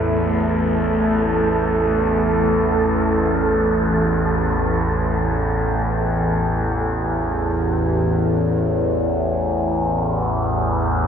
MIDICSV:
0, 0, Header, 1, 4, 480
1, 0, Start_track
1, 0, Tempo, 500000
1, 10629, End_track
2, 0, Start_track
2, 0, Title_t, "Synth texture"
2, 0, Program_c, 0, 99
2, 0, Note_on_c, 0, 69, 67
2, 6509, Note_off_c, 0, 69, 0
2, 10629, End_track
3, 0, Start_track
3, 0, Title_t, "Ambient pad"
3, 0, Program_c, 1, 92
3, 0, Note_on_c, 1, 57, 69
3, 0, Note_on_c, 1, 64, 70
3, 0, Note_on_c, 1, 71, 71
3, 6479, Note_off_c, 1, 57, 0
3, 6483, Note_off_c, 1, 71, 0
3, 6489, Note_off_c, 1, 64, 0
3, 10629, End_track
4, 0, Start_track
4, 0, Title_t, "Synth drone"
4, 0, Program_c, 2, 95
4, 0, Note_on_c, 2, 33, 62
4, 0, Note_on_c, 2, 40, 66
4, 6455, Note_off_c, 2, 40, 0
4, 6458, Note_off_c, 2, 33, 0
4, 6467, Note_on_c, 2, 40, 63
4, 6470, Note_on_c, 2, 33, 61
4, 10629, Note_off_c, 2, 33, 0
4, 10629, Note_off_c, 2, 40, 0
4, 10629, End_track
0, 0, End_of_file